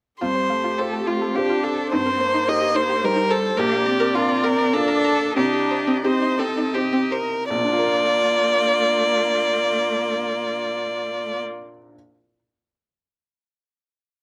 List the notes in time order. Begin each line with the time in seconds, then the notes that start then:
0.21 F2 G3 F4 G4 C5
0.35 C5
0.49 A3 F5
0.64 F4
0.78 F4 G4 A4 C5
0.93 A4
1.07 F4
1.22 A4
1.34 D4 F4 G4 C5 F5
1.50 F4
1.63 A4 F5
1.91 G2 C4 D#4 C5
2.06 A#4
2.19 A#3 C5
2.34 D#4
2.47 D#4 G4 A#4 C5 D#5
2.61 G4
2.74 D#4 C5
2.89 G4
3.02 G3 D#4 G4 A#4 C5
3.16 D#4
3.29 A4 C5
3.57 A#1 A#3 G4 A#4 D5
3.72 F5
3.86 C4 A#5
4.00 A#4
4.15 D4 F4 A#4 F5
4.29 D5
4.44 A#4
4.58 D5
4.73 A#3 D4 F4 A4 A#5
4.88 A#4
5.04 A#5
5.36 C2 C4 D4 G4 D#5
5.53 G4
5.71 C5
5.87 C4
6.04 C4 D#4 G4 C5
6.22 D#4
6.39 C4 A4
6.57 D#4
6.74 C4 D#4 G4 C5
6.93 C4
7.11 A#4 C5
7.49 A#1 A#3 F4 D5
7.57 A#2
7.65 D4
7.71 F4
7.78 A#4
7.86 F5